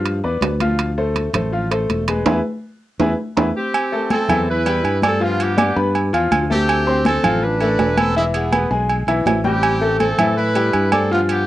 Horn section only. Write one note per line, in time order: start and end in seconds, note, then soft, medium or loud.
3.56 4.08 C4 medium
3.56 4.07 G4 medium
4.12 4.46 C4 medium
4.12 4.46 A4 loud
4.49 5.00 E4 medium
4.49 5.00 B4 loud
5.05 5.21 C4 medium
5.05 5.21 A4 loud
5.23 5.40 B3 medium
5.23 5.40 F4 loud
5.41 5.77 B3 medium
5.41 5.77 G4 loud
6.52 7.02 C4 medium
6.52 7.02 G4 loud
7.07 7.41 C4 medium
7.07 7.41 A4 loud
7.43 7.98 D4 medium
7.43 7.98 B4 loud
7.98 8.17 C4 medium
7.98 8.16 A4 loud
8.16 8.25 G#3 medium
8.16 8.25 E4 loud
8.34 8.69 B3 medium
8.34 8.69 G#4 medium
9.45 9.97 C4 medium
9.45 9.96 G4 loud
10.00 10.35 C4 medium
10.00 10.34 A4 loud
10.37 10.89 E4 medium
10.37 10.89 B4 loud
10.93 11.10 C4 medium
10.93 11.10 A4 medium
11.13 11.21 B3 medium
11.13 11.20 F4 medium
11.31 11.47 B3 medium
11.31 11.47 G4 loud